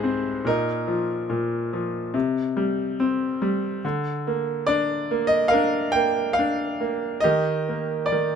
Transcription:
grand piano
Already playing: C2 G#2 C4 G#4 C5 D#5
0.03 C4
0.45 A#2 D#4 A#4
0.88 F3
1.30 A#2
1.73 F3
2.14 C3
2.57 G3
3.00 C4
3.42 G3
3.85 D3
4.27 A#3
4.67 D4 D5
5.11 A#3
5.27 D#5
5.48 A#4 F5
5.54 D4
5.92 A#3 G5
6.33 F5
6.39 D4
6.80 A#3
7.20 G4 D#5
7.25 D#3
7.69 A#3
8.06 D5
8.12 D#3

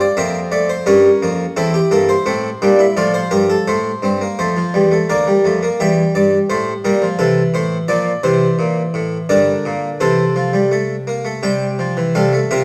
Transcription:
harpsichord
Already playing: F4
0.01 D5
0.17 F2 A#3 C4 E5
0.52 A3 D5
0.69 C5
0.86 G2 G3 C#4 A#4
1.23 F2 A#3
1.57 E2 C4 E4 A4
1.74 G4
1.91 G2 A#3 A4
2.09 C5
2.26 A2 A3 C4
2.62 A#2 G3 D4
2.79 E4
2.97 A2 F3 F4 D5
3.14 C5
3.31 G2 G4 A#4
3.50 A4
3.68 A2 A3 C5
4.02 G2 C4
4.21 A#3
4.39 F2 A3 C5
4.57 F3
4.74 E2 G3
4.92 A3
5.09 D2 A#3 A#4 D5
5.27 G3
5.45 F2 A3
5.63 A#3
5.80 E2 G3 G4 E5
6.15 G2 D5
6.50 A2 A3 C5
6.85 A#2 G3 A#4
7.02 F3
7.19 C3 E3 A4
7.54 A2 C5
7.88 A#2 F3 D5
8.23 C3 E3 C5
8.59 A#2
8.94 A2
9.29 G2 D3 A#4 D5
9.65 A#2
10.00 C3 E3 A4 C5
10.36 F3
10.53 G3
10.71 A3
11.07 A#3
11.25 A3
11.43 C3 G3 G4 G5
11.79 F3
11.97 E3
12.15 C3 G3 A4 F5
12.33 A3
12.51 C3 A#3 F4 E5

